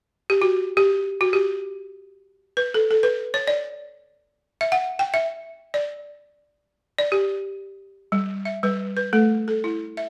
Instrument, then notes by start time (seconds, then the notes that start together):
balafon
0.30 G4
0.42 F#4
0.77 G4
1.21 F#4
1.33 G4
2.57 B4
2.74 A4
2.91 A4
3.03 B4
3.34 C#5
3.48 D5
4.61 E5
4.72 F#5
4.99 G5
5.14 E5
5.74 D5
6.99 D5
7.12 G4
8.12 G3
8.45 E5
8.63 G3 B4
8.97 B4
9.13 A3 A4
9.48 A4
9.64 E4
9.97 E5